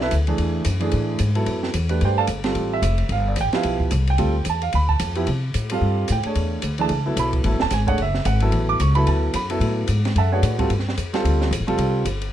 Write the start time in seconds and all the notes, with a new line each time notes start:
Already playing: B1
0.01 E4 A4 B4 E5, snare
0.11 D2, hi-hat pedal, ride
0.27 E3 A3 D4 G#4, ride
0.38 E2, ride
0.65 F#2, hi-hat pedal, ride
0.80 E3 A3 D4 G#4, ride
0.91 A2, ride
1.19 G#2, hi-hat pedal, ride
1.35 F#3 B3 E4 A4, ride
1.46 F#2, ride
1.63 snare
1.74 E2, hi-hat pedal, ride
1.89 A3 D4 G4 B4, ride
2.01 G2, ride
2.05 G4 C5 D5 G5
2.18 A4 D5 F5 A5
2.27 G1, hi-hat pedal, ride
2.44 G3 C4 F4 A4, snare, ride
2.55 A1, ride
2.73 E5
2.82 F1, hi-hat pedal, ride
2.98 ride
3.09 G1 F5, ride
3.28 D5
3.36 A1, hi-hat pedal, ride
3.41 G5
3.53 F3 B3 E4 G4 F5, snare, ride
3.63 B1, ride
3.80 kick
3.91 C2, hi-hat pedal, ride
4.07 G5, ride
4.18 D2 G3 C4 F4 A4, ride
4.45 E2, hi-hat pedal, ride
4.50 A5
4.62 F5, ride
4.73 D2 B5, ride
4.89 A5, kick
5.00 F2, hi-hat pedal, ride
5.15 F3 B3 E4 G4, ride
5.27 C3, ride
5.54 A2, hi-hat pedal, ride
5.70 G3 C4 F4 A4 F5, ride
5.81 G2
6.08 A2, hi-hat pedal, ride
6.12 G5
6.23 A3 D4 G#4 C#5, muted upright bass stroke, ride
6.35 E2, ride
6.62 D2, hi-hat pedal, ride
6.78 E3 A3 D4 G#4 A5, ride
6.89 C#2, ride
7.06 F#3 B3 E4 A4
7.17 B1 B5, hi-hat pedal, ride
7.33 kick, ride
7.44 A1 F#3 B3 E4 A4, ride
7.52 E1
7.60 D1 A5, snare
7.71 G#1 G#5, snare, hi-hat pedal, ride
7.87 A3 D4 G#4 C#5 F#5, kick, ride
7.98 F#1, ride
8.02 E5
8.14 snare
8.25 G#1 F#5, hi-hat pedal, ride
8.40 F#3 B3 E4 A4, ride
8.52 A1, ride
8.69 D6
8.80 C#2 C#6, hi-hat pedal, ride
8.95 F#3 B3 E4 A4 B5, ride
9.07 D2 A5, ride
9.34 F#2 B5, hi-hat pedal, ride
9.50 F#3 B3 E4 A4, ride
9.60 A2, ride
9.88 G#2, hi-hat pedal, ride
10.05 snare, ride
10.15 F#2 A4 E5 F#5 A5, ride
10.32 A3 D4 F#4 G#4 B4 C#5 D5 F#5
10.43 A2, hi-hat pedal, ride
10.58 G3 C4 F4 A4, kick, ride
10.70 G2, ride
10.79 snare
10.89 snare
10.97 F2, hi-hat pedal, ride
11.13 G3 C4 F4 A4, snare, ride
11.24 D2, ride
11.41 snare
11.51 A1, hi-hat pedal, ride
11.60 G1
11.67 F1 G3 C4 F4 A4, ride
11.78 C2, ride
12.05 G1, hi-hat pedal, ride
12.22 ride